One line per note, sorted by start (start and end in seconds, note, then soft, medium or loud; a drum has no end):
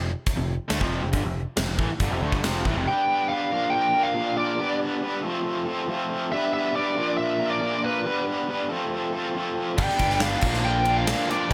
0.00 0.14 F1 medium
0.00 0.11 F2 medium
0.00 0.11 C3 medium
0.26 kick loud
0.26 closed hi-hat medium
0.37 0.58 F1 medium
0.37 0.55 F2 medium
0.37 0.55 C3 medium
0.69 0.80 D2 medium
0.69 0.80 D3 medium
0.69 0.80 A3 loud
0.69 snare loud
0.69 closed hi-hat medium
0.81 1.01 F1 loud
0.81 1.01 F2 medium
0.81 1.01 C3 loud
0.81 1.03 F3 loud
0.81 kick loud
1.02 1.13 F1 medium
1.02 1.13 F2 medium
1.02 1.13 C3 medium
1.13 1.23 G1 loud
1.13 1.24 G2 medium
1.13 1.24 D3 medium
1.13 kick loud
1.13 closed hi-hat medium
1.25 1.45 F1 medium
1.25 1.42 F2 medium
1.25 1.42 C3 medium
1.57 1.67 F1 medium
1.57 1.67 F2 medium
1.57 1.68 C3 medium
1.57 snare loud
1.57 closed hi-hat medium
1.68 1.78 F1 medium
1.68 1.79 F2 medium
1.68 1.79 C3 medium
1.78 1.89 A1 medium
1.78 1.89 A2 medium
1.78 1.89 E3 medium
1.78 kick loud
2.00 2.10 G1 medium
2.00 2.11 G2 medium
2.00 2.11 D3 loud
2.00 kick loud
2.00 closed hi-hat medium
2.11 2.21 F1 loud
2.11 2.22 F2 loud
2.11 2.22 C3 medium
2.21 2.32 D2 medium
2.21 2.32 D3 loud
2.21 2.33 A3 loud
2.32 2.42 G1 medium
2.32 2.43 G2 medium
2.32 2.44 D3 loud
2.32 kick loud
2.43 2.63 F1 medium
2.43 2.65 F2 medium
2.43 2.65 C3 medium
2.43 2.65 F3 medium
2.43 snare loud
2.43 closed hi-hat medium
2.65 2.75 A1 medium
2.65 2.76 A2 medium
2.65 2.77 E3 medium
2.65 kick medium
2.75 2.86 F1 medium
2.75 2.87 F2 medium
2.75 2.87 C3 medium
2.87 3.29 G3 medium
2.87 3.31 B3 medium
2.87 3.30 D4 medium
2.87 3.32 B4 loud
2.87 3.32 G5 loud
3.28 3.50 G3 medium
3.28 3.51 B3 medium
3.28 3.51 D4 medium
3.28 3.74 F5 loud
3.33 3.51 B4 medium
3.51 4.13 A#2 medium
3.51 4.14 F3 medium
3.51 3.96 A#3 medium
3.51 3.95 D4 medium
3.51 3.94 F4 medium
3.51 3.93 A#4 medium
3.70 4.05 G5 medium
3.94 4.14 A#3 medium
3.94 4.15 D4 medium
3.94 4.15 F4 medium
3.94 4.16 A#4 medium
4.03 4.37 F5 loud
4.14 4.57 A#2 medium
4.14 4.58 F3 medium
4.14 4.57 A#3 medium
4.14 4.58 D4 medium
4.14 4.58 F4 loud
4.14 4.59 A#4 loud
4.37 4.78 D5 medium
4.58 5.00 G3 medium
4.58 5.03 B3 medium
4.58 5.02 D4 loud
4.58 5.03 B4 loud
5.02 5.23 G3 medium
5.02 5.23 B3 medium
5.02 5.23 D4 medium
5.02 5.22 B4 medium
5.22 5.86 F3 medium
5.22 5.88 A3 medium
5.22 5.67 C4 medium
5.22 5.66 F4 medium
5.22 5.64 A4 medium
5.65 5.88 C4 medium
5.65 5.89 F4 medium
5.65 5.90 A4 medium
5.88 6.31 F3 medium
5.88 6.31 A3 medium
5.88 6.31 C4 medium
5.88 6.32 F4 loud
5.88 6.32 A4 loud
6.31 6.73 G3 medium
6.31 6.75 B3 medium
6.31 6.74 D4 medium
6.31 6.75 B4 loud
6.31 6.52 E5 loud
6.54 6.74 E5 loud
6.74 6.95 G3 medium
6.74 6.96 B3 medium
6.74 6.96 D4 medium
6.74 6.96 B4 medium
6.74 7.17 D5 loud
6.96 7.60 A#2 medium
6.96 7.60 F3 medium
6.96 7.41 A#3 medium
6.96 7.40 D4 medium
6.96 7.39 F4 medium
6.96 7.39 A#4 medium
7.17 7.50 E5 medium
7.40 7.61 A#3 medium
7.40 7.61 D4 medium
7.40 7.62 F4 medium
7.40 7.62 A#4 medium
7.50 7.84 D5 loud
7.61 8.04 A#2 loud
7.61 8.04 F3 medium
7.61 8.04 A#3 loud
7.61 8.04 D4 medium
7.61 8.05 F4 medium
7.61 8.05 A#4 loud
7.84 8.24 B4 medium
8.04 8.47 G3 medium
8.04 8.48 B3 medium
8.04 8.48 D4 medium
8.04 8.50 B4 loud
8.48 8.69 G3 medium
8.48 8.70 B3 medium
8.48 8.69 D4 medium
8.48 8.69 B4 medium
8.69 9.33 F3 medium
8.69 9.34 A3 medium
8.69 9.14 C4 medium
8.69 9.13 F4 medium
8.69 9.11 A4 medium
9.13 9.35 C4 medium
9.13 9.36 F4 medium
9.13 9.36 A4 medium
9.34 9.77 F3 medium
9.34 9.76 A3 medium
9.34 9.77 C4 medium
9.34 9.77 F4 loud
9.34 9.78 A4 medium
9.76 9.87 G1 loud
9.76 10.21 G2 loud
9.76 10.20 D3 loud
9.76 10.19 G3 medium
9.76 10.21 B3 medium
9.76 10.20 D4 loud
9.76 10.41 D4 medium
9.76 10.42 G4 medium
9.76 10.42 B4 medium
9.76 10.22 B4 loud
9.76 10.41 D5 medium
9.76 10.19 G5 medium
9.76 kick loud
9.76 crash medium
9.89 snare soft
9.99 10.35 G1 medium
9.99 10.22 B3 medium
9.99 10.23 D4 medium
9.99 kick medium
9.99 ride medium
10.04 10.21 G3 medium
10.10 snare soft
10.20 10.42 D3 medium
10.20 10.41 G3 medium
10.20 10.41 B3 medium
10.20 10.41 D4 medium
10.20 10.40 B4 medium
10.20 10.66 F5 loud
10.20 snare loud
10.20 ride medium
10.40 11.12 A#1 loud
10.40 11.03 A#2 medium
10.40 11.04 F3 medium
10.40 10.85 A#3 medium
10.40 10.84 D4 medium
10.40 11.46 D4 medium
10.40 10.84 F4 medium
10.40 11.49 F4 medium
10.40 10.82 A#4 medium
10.40 11.50 A#4 medium
10.40 11.46 D5 medium
10.40 kick loud
10.40 crash medium
10.46 11.08 D3 medium
10.54 snare soft
10.65 10.98 G5 loud
10.84 11.05 A#3 medium
10.84 11.05 D4 medium
10.84 11.06 F4 medium
10.84 11.06 A#4 medium
10.84 ride medium
10.91 11.08 F3 medium
10.98 11.30 F5 loud
11.05 11.48 A#2 loud
11.05 11.48 F3 loud
11.05 11.47 A#3 loud
11.05 11.47 D4 medium
11.05 11.49 F4 loud
11.05 11.49 A#4 medium
11.05 snare loud
11.05 ride loud
11.10 11.50 D3 loud
11.10 11.51 F3 loud
11.10 11.51 A#3 loud
11.10 11.52 D4 loud
11.30 11.52 D5 medium
11.30 ride medium
11.47 11.53 G3 medium
11.47 11.53 B3 medium
11.47 11.53 D4 medium
11.47 11.53 G4 medium
11.47 11.53 B4 medium
11.47 11.53 D5 medium